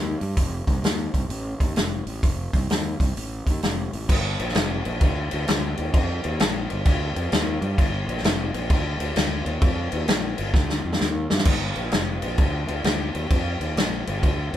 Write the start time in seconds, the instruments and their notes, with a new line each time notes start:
Already playing: fingered electric bass D#2
0.21 fingered electric bass G2, open hi-hat
0.37 fingered electric bass F1, kick, open hi-hat
0.67 fingered electric bass C2, kick, open hi-hat
0.82 fingered electric bass D#2, snare, open hi-hat
1.14 fingered electric bass C2, kick, open hi-hat
1.29 fingered electric bass A1, open hi-hat
1.60 fingered electric bass D#2, kick, open hi-hat
1.76 fingered electric bass F1, snare, open hi-hat
2.07 fingered electric bass A1, open hi-hat
2.23 fingered electric bass F1, kick, open hi-hat
2.53 fingered electric bass C2, kick, open hi-hat
2.70 fingered electric bass D#2, snare, open hi-hat
3.00 fingered electric bass C2, kick, open hi-hat
3.17 fingered electric bass A1, open hi-hat
3.47 fingered electric bass D#2, kick, open hi-hat
3.62 fingered electric bass F1, snare, open hi-hat
3.93 fingered electric bass A1, open hi-hat
4.09 fingered electric bass G1, kick, crash
4.39 fingered electric bass A#1, crash
4.49 snare
4.55 fingered electric bass F1, snare, crash
4.85 fingered electric bass A#1, crash
5.01 fingered electric bass D2, kick, crash
5.31 fingered electric bass D2, crash
5.48 fingered electric bass D2, snare, crash
5.77 fingered electric bass D#2, crash
5.94 fingered electric bass F2, kick, crash
6.24 fingered electric bass D#2, crash
6.40 fingered electric bass A#1, snare, crash
6.70 fingered electric bass G1, crash
6.85 fingered electric bass D2, kick, crash
7.16 fingered electric bass F2, crash
7.32 fingered electric bass D#2, snare, crash
7.62 fingered electric bass G2, crash
7.78 fingered electric bass G1, kick, crash
8.08 fingered electric bass A#1, crash
8.17 snare
8.24 fingered electric bass F1, snare, crash
8.54 fingered electric bass A#1, crash
8.70 fingered electric bass D2, kick, crash
9.00 fingered electric bass D2, crash
9.16 fingered electric bass D2, snare, crash
9.46 fingered electric bass D#2, crash
9.62 fingered electric bass F2, kick, crash
9.92 fingered electric bass D#2, crash
10.08 fingered electric bass A#1, snare, crash
10.38 fingered electric bass G1, crash
10.54 fingered electric bass D2, kick, snare
10.69 snare
10.85 fingered electric bass F2
10.93 snare
11.01 fingered electric bass D#2, snare
11.30 fingered electric bass G2, snare
11.38 snare
11.45 fingered electric bass G1, kick, crash
11.76 fingered electric bass A#1, crash
11.92 fingered electric bass F1, snare, crash
12.22 fingered electric bass A#1, crash
12.38 fingered electric bass D2, kick, crash
12.68 fingered electric bass D2, crash
12.84 fingered electric bass D2, snare, crash
13.15 fingered electric bass D#2, crash
13.30 fingered electric bass F2, kick, crash
13.60 fingered electric bass D#2, crash
13.76 fingered electric bass A#1, snare, crash
14.07 fingered electric bass G1, crash
14.23 fingered electric bass D2, kick, crash
14.53 fingered electric bass F2, crash